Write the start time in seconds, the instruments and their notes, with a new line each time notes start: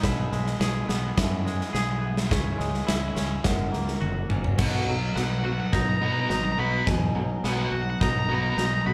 Already playing: pedal steel guitar B4
0.03 fingered electric bass B1, clean electric guitar B2, pedal steel guitar G#4 E5 B5, kick, snare
0.32 fingered electric bass B1, clean electric guitar G#3, snare
0.47 snare
0.60 fingered electric bass B1, clean electric guitar G#4, snare
0.88 fingered electric bass B1, clean electric guitar B3, snare
1.17 fingered electric bass F#2, clean electric guitar E3, kick, snare
1.45 clean electric guitar G#3, snare
1.61 snare
1.73 fingered electric bass B1, clean electric guitar G#4, snare
2.01 clean electric guitar B3
2.17 snare
2.29 fingered electric bass C#2, clean electric guitar C#3, pedal steel guitar C#5 E5 C#6, kick, snare
2.58 fingered electric bass C#2, clean electric guitar G#3, snare
2.74 snare
2.87 fingered electric bass C#2, clean electric guitar E4, snare
3.15 fingered electric bass C#2, clean electric guitar C#4, snare
3.44 fingered electric bass F#1, clean electric guitar F#2, pedal steel guitar A#4 F#5, kick, snare
3.73 fingered electric bass C#2, clean electric guitar A#3, snare
3.88 snare
4.01 fingered electric bass F#1, clean electric guitar F#4, high tom
4.29 fingered electric bass F#1, clean electric guitar C#4, mid tom
4.44 floor tom
4.58 fingered electric bass B1, distorted electric guitar B2 F#3 B3, clean electric guitar B2, pedal steel guitar B3 B4 D#5 F#5, kick, snare, crash
4.87 fingered electric bass B1, distorted electric guitar B2 F#3, clean electric guitar F#3
5.15 fingered electric bass B1, distorted electric guitar B2 F#3, clean electric guitar B3, lead electric guitar F#5, snare
5.23 lead electric guitar F#5
5.30 lead electric guitar F#5
5.39 lead electric guitar F#5
5.44 distorted electric guitar B2 F#3, clean electric guitar F#4, lead electric guitar F#5
5.53 lead electric guitar F#5
5.60 lead electric guitar F#5
5.67 lead electric guitar F#5
5.72 fingered electric bass B1, distorted electric guitar B2 F#3, clean electric guitar D#4, lead electric guitar A#5, kick, snare
5.81 lead electric guitar A#5
5.89 lead electric guitar A#5
5.97 lead electric guitar A#5
6.01 fingered electric bass B2, distorted electric guitar B2 F#3 B3, clean electric guitar B3
6.05 lead electric guitar A#5
6.13 lead electric guitar A#5
6.20 lead electric guitar A#5
6.29 fingered electric bass G#1, distorted electric guitar B2 F#3, clean electric guitar D#4, lead electric guitar A#5, snare
6.37 lead electric guitar A#5
6.45 lead electric guitar A#5
6.52 lead electric guitar A#5
6.57 fingered electric bass B1, distorted electric guitar B2 F#3 B3, clean electric guitar F#4, lead electric guitar B5
6.87 fingered electric bass E2, clean electric guitar B2, distorted electric guitar B2 F#3, pedal steel guitar G#5, kick, snare
7.15 fingered electric bass B1, distorted electric guitar B2 F#3, clean electric guitar F#3
7.44 fingered electric bass B1, distorted electric guitar B2 F#3 B3, clean electric guitar B3, lead electric guitar F#5, snare
7.53 lead electric guitar F#5
7.62 lead electric guitar F#5
7.68 fingered electric bass B1, lead electric guitar F#5
7.72 distorted electric guitar B2 F#3, clean electric guitar F#4, lead electric guitar F#5
7.82 lead electric guitar F#5
7.90 lead electric guitar F#5
8.00 fingered electric bass B1, distorted electric guitar B2 F#3, clean electric guitar D#4, lead electric guitar A#5, kick, snare
8.10 lead electric guitar A#5
8.19 lead electric guitar A#5
8.26 fingered electric bass B1, distorted electric guitar B2 F#3 B3, clean electric guitar B3, lead electric guitar A#5
8.35 lead electric guitar A#5
8.42 lead electric guitar A#5
8.50 lead electric guitar A#5
8.57 fingered electric bass B1, distorted electric guitar B2 F#3, clean electric guitar D#4, lead electric guitar A#5, snare
8.66 lead electric guitar A#5
8.74 lead electric guitar A#5
8.81 lead electric guitar A#5
8.86 fingered electric bass B1, distorted electric guitar B2 F#3, clean electric guitar F#4, lead electric guitar B5